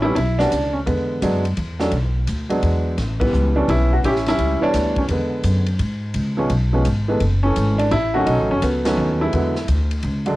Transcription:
Already playing: A1
0.02 G3 B3 C#4 E4
0.15 B1 E4, kick, ride
0.39 G3 B3 C#4 D4 F#4, snare
0.51 C#2, kick, hi-hat pedal, ride
0.73 C#4
0.86 E2 D3 G#3 B3, kick, ride
1.22 F#2 F#3 G#3 B3 D4, kick, hi-hat pedal, ride
1.45 ride
1.57 E2, kick, ride
1.79 F#3 A3 C#4 D4, snare
1.91 B1, kick, ride
2.27 D2, kick, hi-hat pedal, ride
2.49 F#3 G#3 B3 D4, ride
2.63 E2, kick, ride
2.98 A1, kick, snare, ride
3.20 E3 G3 B3, kick, ride
3.33 C#2, hi-hat pedal
3.56 E3 G3 B3 C#4 D4
3.68 B1 E4, kick, ride
3.93 F#4
4.04 A1 C#4 E4 G4, kick, ride
4.16 snare
4.26 G3 C#4 E4, snare, ride
4.39 C#2, kick, ride
4.61 E3 G3 B3 D4 C#5, muted upright bass stroke
4.74 D2, kick, snare, hi-hat pedal, ride
4.96 C#4, kick, ride
5.09 E2 D3 G#3 B3, kick, ride
5.43 F#2, kick, hi-hat pedal, ride
5.66 ride
5.79 G#2, kick, ride
6.14 C#2, kick, ride
6.37 F3 G#3 B3 C#4
6.50 B1, kick, ride
6.73 F3 G#3 B3 C#4
6.85 G#1, kick, hi-hat pedal, ride
7.08 E3 G#3 A3 B3
7.20 F#1, kick, ride
7.43 E3 A3 C#4
7.56 G#1, kick, hi-hat pedal, ride
7.78 D4, ride
7.91 A1 E4, kick, ride
8.14 D#3 F#3 A3 C#4 F#4
8.26 B1 F#3 A3 D#4, kick, ride
8.39 A1
8.51 F#1 C#4
8.62 C#2 B3, kick, hi-hat pedal, ride
8.85 D#3 F#3 A3 B3 C#4, snare, ride
8.97 D#2
9.21 G#3 B3 E4
9.33 E2 D3 F#3 G#3 B3, kick, ride
9.55 snare
9.68 D2, kick, hi-hat pedal, ride
9.91 ride
10.02 C#2, kick, ride
10.26 D3 F#3 G#3 D4, ride

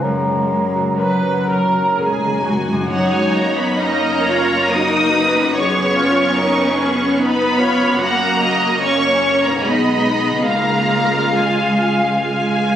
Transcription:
Already playing: C#4
0.01 F#2 F#3 G#3 A#4 A#5
0.29 F#2 C#3
0.37 F#2
0.45 F#2
0.52 F#2 C#4
0.62 F#2
0.71 F#2
0.76 F#4
0.80 F#2
0.87 F#2
0.95 F#2 F#3 A#4 B4 C#5 A#5
1.00 A#4
1.12 F#2
1.20 F#2 F#4
1.29 F#2
1.38 F#2
1.47 F#2 A#4
1.56 F#2
1.65 F#2
1.73 F#2 F#4
1.82 F#2
1.90 F#2
1.97 F#2 G#3 C#4 G#4 A#4 C#5 G#5
2.08 F#2
2.17 F#2
2.22 F#2 C#3
2.33 F#2
2.42 F#2 C#4 F#4
2.50 F#2
2.58 F#2
2.66 F#2 C#3
2.72 F#2 C#4
2.81 F#4 A#4
2.88 F#1 F#2 F#3 D#4 F#4 C#5 F#5
3.12 G#3 G#5
3.34 A#3 A#5
3.56 B3 B5
3.78 A#3 C#4 D#4 D#5 A#5
4.23 F4 C#5
4.70 A#3 D#4 F#4 A#4 D#6
5.13 B4
5.37 F#2
5.42 C#4 F4
5.50 B4
5.56 B3 C#4 G#4 C#5 C#6
5.97 F4
6.36 D#4 A#4
6.76 C#4 G#4
7.18 B3 D#4 B4 B5
7.58 F4 C#5
7.83 F#2
7.88 C#4
7.92 F#4
7.97 F#1 A#3 A#4 F#5
8.01 A#3 F#4 A#5
8.42 F#4 D#5
8.81 A#3 C#4 C#5 C#6
9.44 B2 A#3 A#5
9.51 D#4
9.56 G#4
9.62 B1 G#3 B3 D#4 D#5 B5
10.29 C#3
10.34 C#4
10.39 F4
10.43 G#4 F5 A#5
10.48 C#2 G#3 A#3 F4
11.36 G#3 G#5
12.27 G#3 G#5

